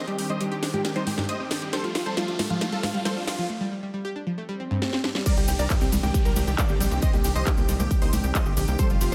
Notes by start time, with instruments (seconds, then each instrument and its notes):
Already playing: supersaw synth D#3 C4 D4 G4, riser
0.08 synth pluck G3 G4, supersaw synth G4, closed hi-hat
0.18 synth pluck G3 G4, supersaw synth G4, open hi-hat
0.30 synth pluck G3 D#5, supersaw synth C5 D#5, closed hi-hat
0.41 synth pluck G3 G4, supersaw synth G4, closed hi-hat
0.52 supersaw synth G4, synth pluck G4, closed hi-hat
0.63 synth pluck D4, snare, open hi-hat
0.74 synth pluck F3 G4, supersaw synth G4, closed hi-hat, high conga
0.85 synth pluck A#3 G4, supersaw synth G4, snare, closed hi-hat
0.96 synth pluck G3 C5, supersaw synth D#4 C5, closed hi-hat
1.07 synth pluck C4 G4, supersaw synth G4, open hi-hat, high conga
1.18 synth pluck G2 G4, supersaw synth G4, snare, closed hi-hat
1.29 synth pluck A3 D#5, supersaw synth C5 D#5, closed hi-hat
1.40 synth pluck C4 G4, supersaw synth G4
1.51 synth pluck D4 G4, supersaw synth G4, snare, open hi-hat
1.62 synth pluck G3 G4, supersaw synth G4, closed hi-hat
1.73 supersaw synth F3 A3 A4 C5, synth pluck G3 C5, snare, closed hi-hat
1.84 synth pluck G3 F4, supersaw synth F4, closed hi-hat
1.95 synth pluck D4 F4, supersaw synth F4, snare, open hi-hat
2.06 synth pluck G3 C5, supersaw synth A4 C5, closed hi-hat
2.17 synth pluck G3 F4, supersaw synth F4, snare, closed hi-hat
2.28 synth pluck D4 F4, supersaw synth F4, closed hi-hat
2.39 synth pluck D4, snare, open hi-hat, high conga
2.50 synth pluck F3 F4, supersaw synth F4, closed hi-hat, high conga
2.61 synth pluck A3 F4, supersaw synth F4, snare, closed hi-hat
2.72 synth pluck G3 A4, supersaw synth F4 A4, closed hi-hat
2.83 synth pluck D4 F4, supersaw synth F4, snare, open hi-hat, high conga
2.94 synth pluck G3 F4, supersaw synth F4, closed hi-hat
3.05 synth pluck G3 C5, supersaw synth A4 C5, snare, closed hi-hat
3.16 synth pluck D4 F4, supersaw synth F4
3.27 synth pluck D4 F4, supersaw synth F4, snare, open hi-hat
3.39 synth pluck F3 F4, supersaw synth F4, closed hi-hat
3.50 synth pluck A3
3.61 synth pluck G3
3.72 synth pluck G3
3.83 synth pluck G3
3.94 synth pluck G3
4.05 synth pluck G4
4.16 synth pluck D4
4.27 synth pluck F3
4.38 synth pluck A3, swell
4.49 synth pluck G3
4.60 synth pluck C4
4.71 synth pluck G2
4.82 synth pluck A3, snare
4.93 synth pluck C4, snare
5.04 synth pluck D4, snare
5.15 synth pluck G3, snare
5.26 supersaw synth D#3 C4 D4 G4 A#4 D5, synth pluck G3 D5, kick, closed hi-hat, crash, downlifter, cabasa
5.37 analog synth bass C2, synth pluck G3 G4, supersaw synth G4, closed hi-hat, cabasa
5.48 analog synth bass C2, synth pluck G4, supersaw synth G4, open hi-hat, cabasa
5.59 analog synth bass C2, synth pluck D4 D5, supersaw synth A#4 D5, closed hi-hat, cabasa
5.70 synth pluck G2 G4, supersaw synth G4, kick, clap, closed hi-hat, cabasa
5.81 analog synth bass C2, synth pluck C4 G4, supersaw synth G4, open hi-hat, cabasa
5.92 analog synth bass C2, synth pluck G3, open hi-hat, high conga, cabasa
6.03 analog synth bass C2, synth pluck A#3 G4, supersaw synth G4, closed hi-hat, high conga, cabasa
6.14 supersaw synth G4, synth pluck G4, kick, closed hi-hat, cabasa
6.25 analog synth bass C2, synth pluck G3 A#4, supersaw synth G4 A#4, closed hi-hat, cabasa
6.36 analog synth bass C2, supersaw synth G4, synth pluck G4, open hi-hat, high conga, cabasa
6.47 analog synth bass C2, supersaw synth G4, synth pluck G4, closed hi-hat, cabasa
6.58 synth pluck G2 D5, supersaw synth A#4 D5, kick, clap, closed hi-hat, cabasa
6.69 analog synth bass G1, synth pluck A#3 G4, supersaw synth G4, cabasa
6.80 analog synth bass A#1, synth pluck G3 G4, supersaw synth G4, open hi-hat, cabasa
6.91 analog synth bass C2, synth pluck A#3 G4, supersaw synth G4, closed hi-hat, cabasa
7.02 synth pluck G4 D#5, supersaw synth C5 D#5, kick, closed hi-hat, cabasa
7.13 analog synth bass C2, synth pluck A#3 G4, supersaw synth G4, closed hi-hat, cabasa
7.24 analog synth bass C2, supersaw synth G4, synth pluck G4, open hi-hat, cabasa
7.35 analog synth bass C2, synth pluck G4 D#5, supersaw synth C5 D#5, closed hi-hat, cabasa
7.46 synth pluck G2 G4, supersaw synth G4, kick, clap, closed hi-hat, cabasa
7.57 analog synth bass C2, synth pluck A#3 G4, supersaw synth G4, closed hi-hat, cabasa
7.69 analog synth bass C2, synth pluck G3, open hi-hat, cabasa
7.80 analog synth bass C2, synth pluck A#3 G4, supersaw synth G4, closed hi-hat, high conga, cabasa
7.90 supersaw synth G4, synth pluck G4, kick, closed hi-hat, cabasa
8.02 analog synth bass C2, synth pluck A#3 C5, supersaw synth D#4 C5, open hi-hat, cabasa
8.13 analog synth bass C2, synth pluck A3 G4, supersaw synth G4, open hi-hat, high conga, cabasa
8.24 analog synth bass C2, supersaw synth G4, synth pluck G4, closed hi-hat, cabasa
8.35 synth pluck G2 D#5, supersaw synth C5 D#5, kick, clap, closed hi-hat, cabasa
8.46 analog synth bass G1, synth pluck A#3 G4, supersaw synth G4, cabasa
8.57 analog synth bass A#1, synth pluck D3 G4, supersaw synth G4, open hi-hat, cabasa
8.68 analog synth bass C2, synth pluck A#3 G4, supersaw synth G4, closed hi-hat, cabasa
8.79 supersaw synth F3 A3 C4 A4 C5, synth pluck G3 C5, kick, closed hi-hat, cabasa
8.90 analog synth bass F1, synth pluck G3 F4, supersaw synth F4, closed hi-hat, cabasa
9.01 analog synth bass F1, supersaw synth F4, synth pluck F4 G4, open hi-hat, cabasa